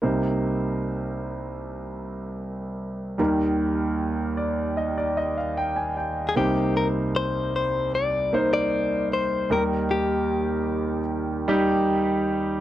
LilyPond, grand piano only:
<<
  \new Staff \with { instrumentName = "Grand piano" } { \time 4/4 \key c \minor \tempo 4 = 76 << { r1 | r4. d''8 ees''16 d''16 ees''16 f''16 g''16 aes''16 g''8 | r1 | r1 | } \\ { <bes ees' c''>1 | <g ees' bes'>1 | <bes ees' c''>2 r8 <bes ees' c''>4. | <g ees' bes'>2 r8 <g ees' g'>4. | } >> }
  \new Staff \with { instrumentName = "Grand piano" } { \clef bass \time 4/4 \key c \minor <c, c>1 | <ees, ees>1 | <c, c>1 | <ees, ees>1 | }
>>